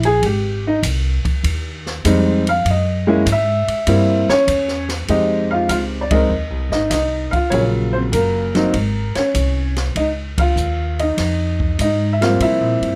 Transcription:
Already playing: A#1
0.03 G#4, ride
0.22 G#1 G4, kick, ride
0.67 D#4
0.83 C2, kick, hi-hat pedal, ride
1.25 muted upright bass stroke, kick, ride
1.43 D#2, kick, ride
1.86 snare
2.05 F2 G3 G#3 C4 D#4, kick, hi-hat pedal, ride
2.47 F5, ride
2.65 F#2, kick, ride
2.70 D#5
3.07 G#3 A#3 C#4 E4
3.26 G#2, kick, hi-hat pedal, ride
3.32 E5
3.68 muted upright bass stroke, ride
3.87 G2 G3 A#3 C4 E4, kick, ride
4.28 C#5, muted upright bass stroke, snare
4.32 C#4
4.47 E2, kick, hi-hat pedal, ride
4.68 snare
4.89 snare, ride
5.08 F2 G#3 C4 D#4 G4 D#5, kick, ride
5.51 F4 F5
5.69 C#2 F4 F5, kick, hi-hat pedal, ride
6.01 D5
6.11 G#3 C4 D#4 A#4 D#5, kick, ride
6.29 D#2
6.50 C2
6.70 G#1 D#5, snare
6.75 D#4
6.90 C2 D#5, kick, snare, hi-hat pedal, ride
6.94 D#4
7.31 F5, muted upright bass stroke, kick, ride
7.35 F4
7.50 A#1 C#3 F#3 A#3 C#4 F4 C#5, kick, ride
7.93 C4 C5
8.12 F#1 A#3 A#4, kick, hi-hat pedal, ride
8.55 F#3 A#3 C4 D#4, snare, ride
8.73 G#1, kick, ride
9.15 C#4 C#5, muted upright bass stroke, snare, ride
9.34 C2, kick, hi-hat pedal, ride
9.76 snare, ride
9.95 C#2 D#4 D#5, kick, ride
10.38 F4 F5, kick, ride
10.56 D#2, hi-hat pedal
10.99 D#4 D#5, ride
11.17 F2, kick, snare, ride
11.60 kick
11.79 G#2 D#5, kick, hi-hat pedal, ride
11.83 D#4
12.13 E5
12.21 F3 G3 A#3 C4 F4 F5, snare, ride
12.40 C3 E4 E5, kick, ride
12.61 A#2
12.81 G2, ride

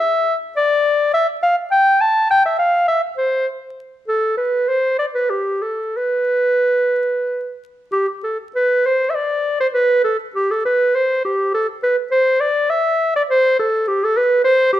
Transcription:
0.00 E5
0.57 D5
1.14 E5
1.43 F5
1.72 G5
2.01 A5
2.30 G5
2.45 E5
2.59 F5
2.88 E5
3.17 C5
4.08 A4
4.37 B4
4.69 C5
4.99 D5
5.14 B4
5.30 G4
5.62 A4
5.97 B4
7.92 G4
8.24 A4
8.56 B4
8.86 C5
9.10 E5
9.15 D5
9.60 C5
9.74 B4
10.04 A4
10.36 G4
10.51 A4
10.65 B4
10.96 C5
11.25 G4
11.54 A4
11.83 B4
12.12 C5
12.40 D5
12.70 E5
13.16 D5
13.30 C5
13.59 A4
13.88 G4
14.04 A4
14.17 B4
14.44 C5
14.73 G4

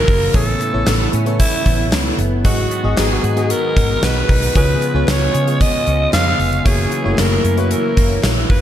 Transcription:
Already playing: C#3 E3 F#3 A#3 C#4 E4 F#4 A#4 C#5
0.08 F#1 A#3, kick, open hi-hat
0.34 A1 A2 E3 A3 B3 C#4 E4 A4 C#5, kick, closed hi-hat
0.61 E3, clap, closed hi-hat
0.73 A1 B3 E4 A4 C#5
0.87 A1 B3, snare, clap, closed hi-hat, tambourine
1.13 A2 C#4, closed hi-hat
1.26 B3 E4 A4 C#5, closed hi-hat
1.39 E3 E4, kick, closed hi-hat
1.66 A1 B3, kick, closed hi-hat
1.92 C#2 E3, snare, clap, closed hi-hat, tambourine
2.18 F#1 B3, closed hi-hat
2.44 G#1 G#2 D#3 F#3 G#3 B3 F#4 G#4 D#5, kick, closed hi-hat
2.71 B3, clap, closed hi-hat
2.84 G#1 B3 F#4 G#4 D#5
2.97 G#1 D#4 G#4, snare, clap, closed hi-hat, tambourine
3.23 G#2 F#4, closed hi-hat
3.36 B3 F#4 G#4 D#5, closed hi-hat
3.50 B3 A#4, closed hi-hat
3.76 G#1 D#4, kick, closed hi-hat
4.02 B1 B3 B4, snare, clap, closed hi-hat, tambourine
4.29 B1 D#4, kick, open hi-hat
4.43 closed hi-hat
4.55 C#2 C#3 F3 B3 F4 G#4 B4 C#5, kick, closed hi-hat
4.82 B3, clap, closed hi-hat
4.94 C#2 B3 F4 G#4 C#5
5.08 C#2 C#4 C#5, snare, clap, closed hi-hat, tambourine
5.34 C#3 G#4, closed hi-hat
5.47 B3 F4 G#4 C#5, closed hi-hat
5.61 B3 D#5, kick, closed hi-hat
5.87 C#2 C#4, closed hi-hat
6.13 F2 B3 F5, snare, clap, closed hi-hat, tambourine
6.39 F1 C#4, open hi-hat
6.53 closed hi-hat
6.65 F#1 E3 F#3 A#3 C#4 E4 F#4 G#4 C#5, kick, closed hi-hat
6.92 E3, clap, closed hi-hat
7.04 F#1 A3 E4 F#4 C#5
7.11 A#3
7.17 F#1 A#3 A#4, snare, clap, closed hi-hat, tambourine
7.44 F#2 C#4, closed hi-hat
7.57 A#3 E4 F#4 B4 C#5, closed hi-hat
7.71 E3 A#4, closed hi-hat
7.97 F#1 A#3, kick, closed hi-hat
8.23 A#1 E3, snare, clap, closed hi-hat, tambourine
8.50 F#1 A#3 B4, kick, open hi-hat

